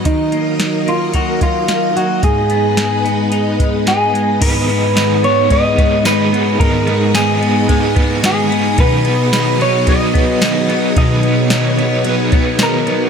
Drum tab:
CC |--------|--------|x-------|--------|
RD |--------|--------|xxxxxxxx|xxxxxxxx|
HH |xxxxxxxx|xxxxxxxx|--------|--------|
TB |--------|--------|--x---x-|--x---x-|
SD |--o---o-|--o---o-|--o---o-|--o---o-|
BD |o---oo--|o----o--|o---oo--|o---oo--|

CC |--------|--------|
RD |xxxxxxxx|xxxxxxxx|
HH |--------|--------|
TB |--x---x-|--x---x-|
SD |--o---o-|--o---o-|
BD |o---oo--|o----o--|